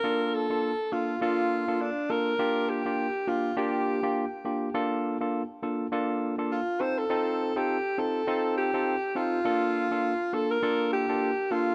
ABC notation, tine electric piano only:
X:1
M:4/4
L:1/16
Q:"Swing 16ths" 1/4=102
K:Bb
V:1 name="Tine electric piano"
[B,DFA]3 [B,DFA] z2 [B,DFA]2 [B,DFA]3 [B,DFA] z2 [B,DFA]2 | [B,DFG]3 [B,DFG] z2 [B,DFG]2 [B,DFG]3 [B,DFG] z2 [B,DFG]2 | [B,DFA]3 [B,DFA] z2 [B,DFA]2 [B,DFA]3 [B,DFA] z2 [CEFA]2 | [CEFA]3 [CEFA] z2 [CEFA]2 [CEFA]3 [CEFA] z2 [CEFA]2 |
[B,DFA]3 [B,DFA] z2 [B,DFA]2 [B,DFA]3 [B,DFA] z2 [B,DFA]2 |]